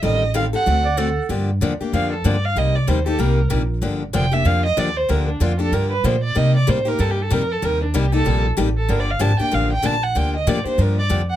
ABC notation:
X:1
M:4/4
L:1/8
Q:"Swing" 1/4=190
K:Gm
V:1 name="Violin"
e2 f ^f4 z | z4 f A d f | e d c A B2 z2 | z2 g =e f _e d c |
B D F A B =B c d | e d c B (3A G A B A | B D G A2 z2 A | (3B d f a g f g a ^f |
g e d c B d z ^f |]
V:2 name="Clarinet"
z4 z d A2 | z8 | z8 | z8 |
z8 | z8 | z8 | z8 |
z8 |]
V:3 name="Steel-string acoustic guitar"
[E,G,CGA] z [E,G,CGA] [CGA] [D,A,C^FA] z [D,A,CFA] z | [D,F,B,DG] z [D,F,B,DG] [B,DG] [D,F,B,DG] z [D,F,B,DG] z | [C,G,B,EG] z [C,G,B,EG] [B,EG] [C,G,B,EG] z [C,G,B,EG] z | [D,F,B,DG] z [D,F,B,DG] [B,DG] [D,F,B,DG] z [D,F,B,DG] z |
[D,F,B,DG] z [D,F,B,DG] [B,DG] [D,F,B,DG] z [D,F,B,DG] z | [C,G,B,EG] z [C,G,B,EG] [B,EG] [C,G,B,EG] z [C,G,B,EG] z | [C,G,B,EG] z [C,G,B,EG] [B,EG] [C,G,B,EG] z [C,G,B,EG] z | [D,F,B,DG] z [D,F,B,DG] [B,DG] [D,F,B,DG] z [D,F,B,DG] z |
[D,F,B,DG] z [D,F,B,DG] [B,DG] [D,F,B,DG] z [D,F,B,DG] z |]
V:4 name="Upright bass" clef=bass
A,,,4 D,,4 | G,,2 =E,, z F,,2 G,,2 | C,,2 E,,2 C,,2 B,,,2 | G,,,2 F,,,2 F,,2 E,,2 |
D,,2 F,,2 G,,2 B,,2 | C,2 A,,2 G,,2 F,,2 | E,,2 C,,2 B,,,2 A,,,2 | G,,,2 _A,,, z =A,,,2 B,,,2 |
D,,2 A,, z G,,2 F,,2 |]